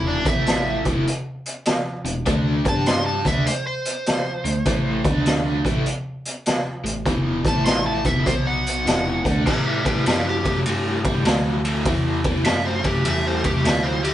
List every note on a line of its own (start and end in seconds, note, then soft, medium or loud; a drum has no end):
0.00 0.23 E1 medium
0.00 0.24 E2 medium
0.00 0.24 B2 loud
0.00 0.23 E3 loud
0.07 0.26 D4 medium
0.24 0.82 A1 medium
0.24 0.84 A2 medium
0.24 0.84 E3 medium
0.24 0.84 A3 medium
0.24 0.85 E5 medium
0.24 kick loud
0.24 closed hi-hat medium
0.46 snare loud
0.46 closed hi-hat medium
0.85 1.05 E1 medium
0.85 1.06 E2 medium
0.85 1.06 B2 medium
0.85 1.06 E3 loud
0.85 kick medium
0.85 closed hi-hat medium
1.07 closed hi-hat medium
1.46 closed hi-hat medium
1.65 snare loud
1.65 closed hi-hat medium
2.05 2.25 E1 medium
2.05 2.22 E2 medium
2.05 2.22 B2 medium
2.05 closed hi-hat medium
2.26 2.62 D2 medium
2.26 2.64 D3 medium
2.26 2.64 A3 medium
2.26 2.64 D4 medium
2.26 kick medium
2.26 closed hi-hat medium
2.65 3.21 G2 medium
2.65 3.24 G3 medium
2.65 3.24 D4 medium
2.65 3.24 G4 loud
2.65 kick loud
2.65 closed hi-hat medium
2.69 2.87 A5 medium
2.86 3.06 C6 medium
2.86 snare loud
2.86 closed hi-hat medium
3.06 3.26 A5 medium
3.24 3.45 D2 medium
3.24 3.45 D3 medium
3.24 3.46 A3 medium
3.24 3.46 D4 loud
3.24 3.46 E5 medium
3.24 kick medium
3.24 closed hi-hat medium
3.47 3.66 C5 medium
3.47 closed hi-hat medium
3.67 5.01 C5 loud
3.85 closed hi-hat medium
4.06 snare loud
4.06 closed hi-hat medium
4.45 4.64 D2 medium
4.45 4.62 D3 medium
4.45 4.62 A3 medium
4.45 closed hi-hat medium
4.65 5.02 A1 medium
4.65 5.04 A2 medium
4.65 5.04 E3 medium
4.65 5.04 A3 medium
4.65 kick loud
4.65 closed hi-hat medium
5.04 5.60 D2 loud
5.04 5.64 D3 medium
5.04 5.64 A3 loud
5.04 5.65 D4 medium
5.04 kick loud
5.04 closed hi-hat medium
5.26 snare loud
5.26 closed hi-hat medium
5.64 5.84 A1 medium
5.64 5.85 A2 medium
5.64 5.85 E3 medium
5.64 5.86 A3 medium
5.64 kick medium
5.64 closed hi-hat medium
5.86 closed hi-hat medium
6.25 closed hi-hat medium
6.46 snare loud
6.46 closed hi-hat medium
6.84 7.04 A1 medium
6.84 7.01 A2 medium
6.84 7.01 E3 medium
6.84 closed hi-hat medium
7.06 7.42 E1 medium
7.06 7.43 E2 medium
7.06 7.44 B2 medium
7.06 7.44 E3 loud
7.06 kick loud
7.06 closed hi-hat medium
7.44 8.00 A1 medium
7.44 8.04 A2 medium
7.44 8.04 E3 medium
7.44 8.04 A3 loud
7.44 7.66 A5 medium
7.44 kick loud
7.44 closed hi-hat medium
7.65 7.85 C6 medium
7.65 snare loud
7.65 closed hi-hat medium
7.87 8.05 A5 medium
8.04 8.24 E1 medium
8.04 8.25 E2 medium
8.04 8.25 B2 medium
8.04 8.27 E3 medium
8.04 8.25 E5 medium
8.04 kick medium
8.04 closed hi-hat medium
8.26 8.82 B1 medium
8.26 8.85 B2 medium
8.26 8.85 F#3 medium
8.26 8.86 B3 loud
8.26 8.45 C5 medium
8.26 kick loud
8.26 closed hi-hat medium
8.47 9.43 F#5 medium
8.66 closed hi-hat medium
8.85 9.21 E1 medium
8.85 9.23 E2 medium
8.85 9.24 B2 medium
8.85 9.23 E3 medium
8.85 snare loud
8.85 closed hi-hat medium
9.25 9.44 D2 medium
9.25 9.45 D3 medium
9.25 9.46 A3 medium
9.25 9.46 D4 medium
9.25 kick loud
9.25 closed hi-hat medium
9.46 9.81 A2 medium
9.46 10.04 A2 medium
9.46 9.81 E3 medium
9.46 9.66 G4 medium
9.46 9.66 E5 loud
9.46 kick loud
9.46 crash medium
9.67 9.84 G4 medium
9.67 9.86 E5 medium
9.84 10.03 A2 medium
9.84 10.04 E3 medium
9.84 10.04 G4 medium
9.84 10.05 B4 medium
9.84 kick medium
9.84 ride medium
10.04 10.64 F#2 medium
10.04 10.40 A2 medium
10.04 10.40 F#3 medium
10.04 10.25 G4 medium
10.04 10.26 B4 medium
10.04 snare loud
10.04 ride medium
10.29 10.59 G4 medium
10.43 10.63 A2 medium
10.43 10.63 F#3 medium
10.43 kick medium
10.43 ride medium
10.66 11.24 G2 medium
10.66 11.01 A2 medium
10.66 11.01 G3 medium
10.66 ride medium
11.04 11.24 A2 medium
11.04 11.24 G3 medium
11.04 kick medium
11.04 ride medium
11.25 11.84 D2 medium
11.25 11.60 A2 medium
11.25 11.61 F#3 medium
11.25 snare loud
11.25 ride medium
11.65 11.83 A2 medium
11.65 11.84 F#3 medium
11.65 ride medium
11.85 12.43 E2 medium
11.85 12.21 A2 medium
11.85 12.21 E3 medium
11.85 kick loud
11.85 ride medium
12.24 12.43 A2 medium
12.24 12.44 E3 medium
12.24 kick medium
12.24 ride medium
12.45 13.04 F#2 medium
12.45 12.80 A2 medium
12.45 12.81 F#3 medium
12.45 12.65 E5 medium
12.45 snare loud
12.45 ride medium
12.66 12.85 C5 medium
12.83 13.03 A2 medium
12.83 13.03 F#3 medium
12.83 13.06 G4 medium
12.83 kick medium
12.83 ride medium
13.05 13.64 E2 medium
13.05 13.40 A2 medium
13.05 13.40 G3 medium
13.05 13.27 E5 medium
13.05 ride medium
13.27 13.46 C5 medium
13.44 13.63 A2 medium
13.44 13.63 G3 medium
13.44 13.65 G4 medium
13.44 kick medium
13.44 ride medium
13.65 14.14 D2 medium
13.65 14.00 A2 medium
13.65 14.00 F#3 medium
13.65 13.85 E5 loud
13.65 snare loud
13.65 ride medium
13.83 14.04 C5 medium
14.03 14.14 A2 medium
14.03 14.14 F#3 medium
14.03 14.14 G4 medium
14.03 ride medium